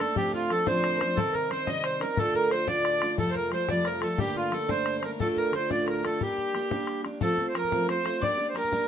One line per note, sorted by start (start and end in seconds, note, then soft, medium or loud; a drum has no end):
0.00 0.17 G3 soft
0.00 0.17 A3 soft
0.00 0.17 A#3 medium
0.00 0.17 D4 medium
0.00 0.16 A4 medium
0.00 0.18 A4 medium
0.16 0.50 D2 medium
0.16 0.50 A2 medium
0.16 0.49 F3 medium
0.16 0.51 A3 medium
0.16 0.50 C4 medium
0.16 0.51 D4 medium
0.16 0.32 G4 loud
0.16 0.33 G4 medium
0.16 bodhran medium
0.33 0.52 F4 medium
0.33 0.51 F4 medium
0.33 bodhran soft
0.50 0.67 F3 medium
0.50 0.66 A3 medium
0.50 0.66 C4 medium
0.50 0.65 D4 medium
0.50 0.69 A4 medium
0.50 0.67 A4 loud
0.50 bodhran medium
0.67 1.02 D2 medium
0.67 1.01 A2 medium
0.67 1.01 F3 medium
0.67 1.00 A3 medium
0.67 1.01 C4 medium
0.67 0.99 D4 medium
0.67 1.19 C5 loud
0.67 0.82 C5 medium
0.67 bodhran medium
0.80 0.98 C5 medium
0.80 0.84 D5 medium
0.80 bodhran medium
0.97 1.17 D4 medium
0.97 1.03 A#4 medium
1.01 1.17 F3 soft
1.01 1.18 A3 soft
1.01 1.17 C4 soft
1.01 1.19 C5 medium
1.01 bodhran medium
1.17 1.51 C3 medium
1.17 1.48 D#3 medium
1.17 1.50 G3 medium
1.17 1.50 C4 medium
1.17 1.51 D#4 medium
1.17 1.34 A4 medium
1.17 1.36 A4 medium
1.17 bodhran medium
1.33 1.51 A#4 medium
1.33 bodhran soft
1.50 1.67 D#3 medium
1.50 1.67 G3 medium
1.50 1.67 C4 medium
1.50 1.66 D#4 medium
1.50 1.68 C5 medium
1.50 1.71 C5 medium
1.50 bodhran medium
1.67 2.02 C3 medium
1.67 2.02 D#3 medium
1.67 2.02 G3 medium
1.67 2.01 C4 medium
1.67 1.99 D#4 medium
1.67 1.83 D#5 loud
1.67 1.88 D#5 medium
1.67 bodhran medium
1.84 2.00 C5 medium
1.84 2.05 C5 medium
1.84 bodhran medium
2.00 2.19 G3 soft
2.00 2.19 C4 soft
2.00 2.18 D#4 medium
2.00 2.18 A#4 medium
2.00 2.21 A#4 medium
2.00 bodhran medium
2.17 2.51 D2 medium
2.17 2.52 A2 medium
2.17 2.49 D3 medium
2.17 2.51 A3 medium
2.17 2.51 D4 medium
2.17 2.52 F4 medium
2.17 2.34 A4 loud
2.17 2.37 A4 medium
2.17 bodhran medium
2.35 2.51 A#4 loud
2.35 2.54 A#4 medium
2.35 bodhran soft
2.50 2.67 D3 medium
2.50 2.67 A3 medium
2.50 2.67 D4 medium
2.50 2.66 F4 medium
2.50 2.67 C5 medium
2.50 2.70 C5 medium
2.50 bodhran medium
2.67 3.02 D2 medium
2.67 3.02 A2 medium
2.67 3.02 D3 medium
2.67 3.03 A3 medium
2.67 3.01 D4 medium
2.67 3.00 F4 medium
2.67 3.15 D5 loud
2.67 3.19 D5 medium
2.67 bodhran medium
2.85 bodhran medium
3.01 3.18 D3 soft
3.01 3.18 A3 soft
3.01 3.19 D4 medium
3.01 3.18 F4 medium
3.01 bodhran medium
3.18 3.52 F2 medium
3.18 3.52 C3 medium
3.18 3.50 F3 medium
3.18 3.51 G3 medium
3.18 3.53 A3 medium
3.18 3.53 F4 medium
3.18 3.31 A4 medium
3.18 3.36 A4 medium
3.18 bodhran medium
3.31 3.52 A#4 medium
3.31 3.35 C5 medium
3.35 3.51 A#4 medium
3.35 bodhran soft
3.51 3.68 F3 medium
3.51 3.68 G3 medium
3.51 3.67 A3 medium
3.51 3.67 F4 medium
3.51 3.72 C5 medium
3.51 3.70 C5 medium
3.51 bodhran medium
3.68 4.03 F2 medium
3.68 4.03 C3 medium
3.68 4.02 F3 medium
3.68 4.02 G3 medium
3.68 4.02 A3 medium
3.68 4.00 F4 medium
3.68 3.86 D5 medium
3.68 3.89 D5 medium
3.68 bodhran medium
3.85 4.01 A#4 medium
3.85 4.04 A#4 medium
3.85 bodhran medium
4.01 4.19 F3 soft
4.01 4.18 G3 soft
4.01 4.19 A3 medium
4.01 4.19 F4 medium
4.01 4.19 A4 medium
4.01 4.22 A4 medium
4.01 bodhran medium
4.18 4.52 G2 medium
4.18 4.70 D3 medium
4.18 4.50 G3 medium
4.18 4.52 A3 medium
4.18 4.51 A#3 medium
4.18 4.54 D4 medium
4.18 4.36 G4 loud
4.18 4.38 G4 medium
4.18 bodhran medium
4.35 4.53 F4 medium
4.35 4.55 F4 medium
4.35 bodhran soft
4.52 4.69 G3 medium
4.52 4.68 A3 medium
4.52 4.68 A#3 medium
4.52 4.67 D4 medium
4.52 4.70 A4 medium
4.52 4.71 A4 medium
4.52 bodhran medium
4.68 5.04 G2 medium
4.68 5.19 D3 medium
4.68 5.03 G3 medium
4.68 5.02 A3 medium
4.68 5.03 A#3 medium
4.68 5.02 D4 medium
4.68 5.05 C5 medium
4.68 4.97 C5 loud
4.68 bodhran medium
4.86 bodhran medium
5.00 5.19 A3 soft
5.00 5.20 A#3 soft
5.00 5.19 D4 medium
5.00 5.22 A#4 medium
5.00 5.11 A#4 medium
5.00 5.04 C5 medium
5.00 bodhran medium
5.05 5.19 G3 soft
5.19 5.53 D2 medium
5.19 5.53 A2 medium
5.19 5.51 D3 medium
5.19 5.52 A3 medium
5.19 5.53 D4 medium
5.19 5.54 F4 medium
5.19 5.40 A4 medium
5.19 5.28 A4 loud
5.19 bodhran medium
5.37 5.54 A#4 medium
5.37 5.56 A#4 medium
5.37 bodhran soft
5.52 5.69 D3 medium
5.52 5.70 A3 medium
5.52 5.69 D4 medium
5.52 5.69 F4 medium
5.52 5.72 C5 medium
5.52 5.70 C5 medium
5.52 bodhran medium
5.70 6.05 D2 medium
5.70 6.04 A2 medium
5.70 6.04 D3 medium
5.70 6.04 A3 medium
5.70 6.03 D4 medium
5.70 6.02 F4 medium
5.70 5.88 D5 medium
5.70 5.87 D5 medium
5.70 bodhran medium
5.87 6.06 A#4 medium
5.87 bodhran medium
6.03 6.20 D3 soft
6.03 6.21 A3 soft
6.03 6.21 D4 medium
6.03 6.20 F4 medium
6.03 6.20 A4 medium
6.03 6.22 A4 medium
6.03 bodhran medium
6.20 6.53 G3 medium
6.20 6.54 A#3 medium
6.20 6.55 D4 medium
6.20 7.00 G4 medium
6.20 6.55 G4 medium
6.20 7.01 G4 medium
6.20 bodhran medium
6.38 bodhran soft
6.54 6.71 G3 medium
6.54 6.71 A#3 medium
6.54 6.71 D4 medium
6.54 6.70 G4 medium
6.54 bodhran medium
6.71 7.06 G3 medium
6.71 7.05 A#3 medium
6.71 7.04 D4 medium
6.71 7.03 G4 medium
6.71 bodhran medium
6.87 bodhran medium
7.04 7.21 A#3 soft
7.04 7.22 D4 medium
7.04 7.21 G4 medium
7.04 bodhran medium
7.20 7.38 F3 medium
7.20 7.38 A3 medium
7.20 7.38 C4 medium
7.20 7.37 F4 medium
7.20 7.46 A4 medium
7.20 7.47 A4 medium
7.20 bodhran medium
7.38 7.55 A3 soft
7.38 7.54 C4 soft
7.38 bodhran soft
7.48 7.55 C5 medium
7.54 7.71 F3 medium
7.54 7.71 A3 medium
7.54 7.72 C4 medium
7.54 7.70 F4 medium
7.54 7.86 A#4 medium
7.54 7.90 A#4 medium
7.54 7.87 A#4 loud
7.54 bodhran medium
7.64 bodhran soft
7.72 7.87 F3 medium
7.72 7.88 A3 medium
7.72 7.87 C4 medium
7.72 7.88 F4 medium
7.72 bodhran medium
7.88 8.05 F3 medium
7.88 8.05 A3 medium
7.88 8.05 C4 medium
7.88 8.03 F4 medium
7.88 8.04 C5 medium
7.88 8.24 C5 medium
7.88 bodhran medium
8.05 8.22 A3 soft
8.05 8.21 C4 soft
8.05 8.22 F4 medium
8.05 8.20 C5 medium
8.05 bodhran medium
8.21 8.38 G3 medium
8.21 8.38 A#3 medium
8.21 8.38 D4 medium
8.21 8.36 G4 medium
8.21 8.46 D5 medium
8.21 8.47 D5 medium
8.21 bodhran medium
8.37 8.54 A#3 soft
8.37 8.55 D4 medium
8.37 8.55 G4 medium
8.49 8.56 C5 medium
8.54 8.71 G3 medium
8.54 8.72 A#3 medium
8.54 8.71 D4 medium
8.54 8.70 G4 medium
8.54 8.86 A#4 medium
8.54 8.88 A#4 medium
8.54 bodhran medium
8.64 bodhran soft
8.72 8.87 G3 medium
8.72 8.88 A#3 medium
8.72 8.88 D4 medium
8.72 8.88 G4 medium
8.72 bodhran medium